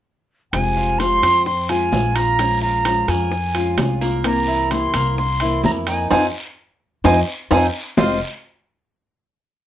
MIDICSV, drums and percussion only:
0, 0, Header, 1, 2, 480
1, 0, Start_track
1, 0, Key_signature, -4, "minor"
1, 0, Tempo, 465477
1, 554, Time_signature, 4, 2, 24, 8
1, 9970, End_track
2, 0, Start_track
2, 0, Title_t, "Drums"
2, 549, Note_on_c, 9, 60, 71
2, 549, Note_on_c, 9, 65, 93
2, 551, Note_on_c, 9, 70, 68
2, 556, Note_on_c, 9, 74, 72
2, 652, Note_off_c, 9, 60, 0
2, 652, Note_off_c, 9, 65, 0
2, 654, Note_off_c, 9, 70, 0
2, 659, Note_off_c, 9, 74, 0
2, 788, Note_on_c, 9, 60, 30
2, 790, Note_on_c, 9, 70, 29
2, 891, Note_off_c, 9, 60, 0
2, 893, Note_off_c, 9, 70, 0
2, 1028, Note_on_c, 9, 60, 53
2, 1029, Note_on_c, 9, 70, 62
2, 1030, Note_on_c, 9, 65, 62
2, 1031, Note_on_c, 9, 73, 65
2, 1131, Note_off_c, 9, 60, 0
2, 1133, Note_off_c, 9, 70, 0
2, 1134, Note_off_c, 9, 65, 0
2, 1134, Note_off_c, 9, 73, 0
2, 1266, Note_on_c, 9, 70, 28
2, 1272, Note_on_c, 9, 60, 32
2, 1272, Note_on_c, 9, 65, 79
2, 1274, Note_on_c, 9, 73, 62
2, 1369, Note_off_c, 9, 70, 0
2, 1375, Note_off_c, 9, 60, 0
2, 1375, Note_off_c, 9, 65, 0
2, 1377, Note_off_c, 9, 73, 0
2, 1506, Note_on_c, 9, 70, 70
2, 1507, Note_on_c, 9, 60, 57
2, 1511, Note_on_c, 9, 74, 59
2, 1609, Note_off_c, 9, 70, 0
2, 1610, Note_off_c, 9, 60, 0
2, 1614, Note_off_c, 9, 74, 0
2, 1745, Note_on_c, 9, 65, 61
2, 1746, Note_on_c, 9, 60, 31
2, 1750, Note_on_c, 9, 70, 28
2, 1848, Note_off_c, 9, 65, 0
2, 1849, Note_off_c, 9, 60, 0
2, 1853, Note_off_c, 9, 70, 0
2, 1984, Note_on_c, 9, 60, 34
2, 1984, Note_on_c, 9, 61, 78
2, 1985, Note_on_c, 9, 70, 61
2, 1988, Note_on_c, 9, 66, 68
2, 1989, Note_on_c, 9, 73, 70
2, 2087, Note_off_c, 9, 60, 0
2, 2087, Note_off_c, 9, 61, 0
2, 2088, Note_off_c, 9, 70, 0
2, 2091, Note_off_c, 9, 66, 0
2, 2092, Note_off_c, 9, 73, 0
2, 2223, Note_on_c, 9, 65, 81
2, 2223, Note_on_c, 9, 70, 28
2, 2227, Note_on_c, 9, 73, 67
2, 2326, Note_off_c, 9, 70, 0
2, 2327, Note_off_c, 9, 65, 0
2, 2331, Note_off_c, 9, 73, 0
2, 2463, Note_on_c, 9, 74, 67
2, 2464, Note_on_c, 9, 60, 75
2, 2464, Note_on_c, 9, 70, 71
2, 2468, Note_on_c, 9, 65, 66
2, 2566, Note_off_c, 9, 74, 0
2, 2567, Note_off_c, 9, 70, 0
2, 2568, Note_off_c, 9, 60, 0
2, 2571, Note_off_c, 9, 65, 0
2, 2700, Note_on_c, 9, 60, 34
2, 2702, Note_on_c, 9, 70, 28
2, 2803, Note_off_c, 9, 60, 0
2, 2805, Note_off_c, 9, 70, 0
2, 2941, Note_on_c, 9, 60, 51
2, 2941, Note_on_c, 9, 65, 87
2, 2942, Note_on_c, 9, 73, 67
2, 2943, Note_on_c, 9, 70, 66
2, 3044, Note_off_c, 9, 60, 0
2, 3044, Note_off_c, 9, 65, 0
2, 3045, Note_off_c, 9, 73, 0
2, 3046, Note_off_c, 9, 70, 0
2, 3180, Note_on_c, 9, 65, 66
2, 3181, Note_on_c, 9, 60, 29
2, 3182, Note_on_c, 9, 73, 61
2, 3184, Note_on_c, 9, 70, 27
2, 3283, Note_off_c, 9, 65, 0
2, 3284, Note_off_c, 9, 60, 0
2, 3285, Note_off_c, 9, 73, 0
2, 3287, Note_off_c, 9, 70, 0
2, 3419, Note_on_c, 9, 60, 68
2, 3423, Note_on_c, 9, 70, 69
2, 3423, Note_on_c, 9, 74, 64
2, 3522, Note_off_c, 9, 60, 0
2, 3526, Note_off_c, 9, 70, 0
2, 3526, Note_off_c, 9, 74, 0
2, 3658, Note_on_c, 9, 65, 67
2, 3659, Note_on_c, 9, 60, 31
2, 3662, Note_on_c, 9, 70, 29
2, 3761, Note_off_c, 9, 65, 0
2, 3762, Note_off_c, 9, 60, 0
2, 3765, Note_off_c, 9, 70, 0
2, 3895, Note_on_c, 9, 65, 91
2, 3895, Note_on_c, 9, 66, 64
2, 3896, Note_on_c, 9, 70, 66
2, 3901, Note_on_c, 9, 60, 34
2, 3901, Note_on_c, 9, 61, 76
2, 3902, Note_on_c, 9, 73, 65
2, 3998, Note_off_c, 9, 65, 0
2, 3998, Note_off_c, 9, 66, 0
2, 3999, Note_off_c, 9, 70, 0
2, 4004, Note_off_c, 9, 60, 0
2, 4004, Note_off_c, 9, 61, 0
2, 4006, Note_off_c, 9, 73, 0
2, 4141, Note_on_c, 9, 73, 66
2, 4143, Note_on_c, 9, 70, 29
2, 4244, Note_off_c, 9, 73, 0
2, 4247, Note_off_c, 9, 70, 0
2, 4375, Note_on_c, 9, 74, 74
2, 4376, Note_on_c, 9, 65, 88
2, 4379, Note_on_c, 9, 60, 72
2, 4382, Note_on_c, 9, 70, 72
2, 4478, Note_off_c, 9, 74, 0
2, 4479, Note_off_c, 9, 65, 0
2, 4482, Note_off_c, 9, 60, 0
2, 4485, Note_off_c, 9, 70, 0
2, 4621, Note_on_c, 9, 60, 31
2, 4621, Note_on_c, 9, 70, 27
2, 4724, Note_off_c, 9, 60, 0
2, 4724, Note_off_c, 9, 70, 0
2, 4855, Note_on_c, 9, 73, 68
2, 4856, Note_on_c, 9, 65, 61
2, 4862, Note_on_c, 9, 60, 55
2, 4862, Note_on_c, 9, 70, 65
2, 4958, Note_off_c, 9, 73, 0
2, 4960, Note_off_c, 9, 65, 0
2, 4965, Note_off_c, 9, 60, 0
2, 4965, Note_off_c, 9, 70, 0
2, 5092, Note_on_c, 9, 65, 89
2, 5097, Note_on_c, 9, 70, 28
2, 5098, Note_on_c, 9, 73, 68
2, 5102, Note_on_c, 9, 60, 31
2, 5195, Note_off_c, 9, 65, 0
2, 5200, Note_off_c, 9, 70, 0
2, 5201, Note_off_c, 9, 73, 0
2, 5205, Note_off_c, 9, 60, 0
2, 5342, Note_on_c, 9, 74, 68
2, 5344, Note_on_c, 9, 60, 59
2, 5344, Note_on_c, 9, 70, 70
2, 5445, Note_off_c, 9, 74, 0
2, 5447, Note_off_c, 9, 70, 0
2, 5448, Note_off_c, 9, 60, 0
2, 5570, Note_on_c, 9, 65, 65
2, 5582, Note_on_c, 9, 60, 30
2, 5587, Note_on_c, 9, 70, 27
2, 5673, Note_off_c, 9, 65, 0
2, 5685, Note_off_c, 9, 60, 0
2, 5691, Note_off_c, 9, 70, 0
2, 5811, Note_on_c, 9, 66, 66
2, 5816, Note_on_c, 9, 73, 72
2, 5822, Note_on_c, 9, 60, 33
2, 5822, Note_on_c, 9, 61, 84
2, 5827, Note_on_c, 9, 70, 70
2, 5914, Note_off_c, 9, 66, 0
2, 5920, Note_off_c, 9, 73, 0
2, 5925, Note_off_c, 9, 60, 0
2, 5925, Note_off_c, 9, 61, 0
2, 5930, Note_off_c, 9, 70, 0
2, 6051, Note_on_c, 9, 65, 79
2, 6059, Note_on_c, 9, 73, 67
2, 6069, Note_on_c, 9, 70, 30
2, 6154, Note_off_c, 9, 65, 0
2, 6162, Note_off_c, 9, 73, 0
2, 6172, Note_off_c, 9, 70, 0
2, 6296, Note_on_c, 9, 65, 93
2, 6301, Note_on_c, 9, 74, 96
2, 6302, Note_on_c, 9, 60, 96
2, 6307, Note_on_c, 9, 70, 94
2, 6399, Note_off_c, 9, 65, 0
2, 6404, Note_off_c, 9, 74, 0
2, 6405, Note_off_c, 9, 60, 0
2, 6411, Note_off_c, 9, 70, 0
2, 7262, Note_on_c, 9, 60, 88
2, 7264, Note_on_c, 9, 74, 92
2, 7265, Note_on_c, 9, 70, 98
2, 7266, Note_on_c, 9, 65, 98
2, 7365, Note_off_c, 9, 60, 0
2, 7367, Note_off_c, 9, 74, 0
2, 7368, Note_off_c, 9, 70, 0
2, 7369, Note_off_c, 9, 65, 0
2, 7741, Note_on_c, 9, 60, 96
2, 7743, Note_on_c, 9, 65, 95
2, 7743, Note_on_c, 9, 70, 89
2, 7744, Note_on_c, 9, 74, 98
2, 7844, Note_off_c, 9, 60, 0
2, 7846, Note_off_c, 9, 65, 0
2, 7846, Note_off_c, 9, 70, 0
2, 7847, Note_off_c, 9, 74, 0
2, 8223, Note_on_c, 9, 61, 102
2, 8226, Note_on_c, 9, 66, 90
2, 8227, Note_on_c, 9, 70, 96
2, 8230, Note_on_c, 9, 74, 91
2, 8326, Note_off_c, 9, 61, 0
2, 8329, Note_off_c, 9, 66, 0
2, 8330, Note_off_c, 9, 70, 0
2, 8334, Note_off_c, 9, 74, 0
2, 9970, End_track
0, 0, End_of_file